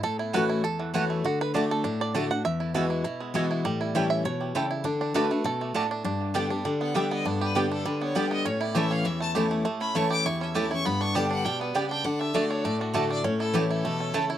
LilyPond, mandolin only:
\new Staff \with { instrumentName = "Mandolin" } { \time 4/4 \key d \major \tempo 4 = 200 r4 <a fis' cis'' fis''>8 r4. <a fis' cis'' fis''>8 r8 | r4 <a fis' d'' a''>8 r4. <a fis' d'' a''>8 r8 | r4 <b fis' e'' gis''>8 r4. <b fis' e'' gis''>8 r8 | r4 <a e' cis'' g''>8 r4. <a e' cis'' g''>8 r8 |
r4 <a fis' d'' a''>8 r4. <a fis' d'' a''>8 r8 | r4 <b g' d'' g''>8 r4. <b g' d'' g''>8 r8 | r4 <b g' d'' g''>8 r4. <b g' d'' g''>8 r8 | r4 <a e' cis'' a''>8 r4. <a e' cis'' a''>8 r8 |
r4 <a e' cis'' a''>8 r4. <a e' cis'' a''>8 r8 | r4 <b g' d'' g''>8 r4. <b g' d'' g''>8 r8 | r4 <a fis' d'' a''>8 r4. <a fis' d'' a''>8 r8 | r4 <a e' cis'' a''>8 r4. <a e' cis'' a''>8 r8 | }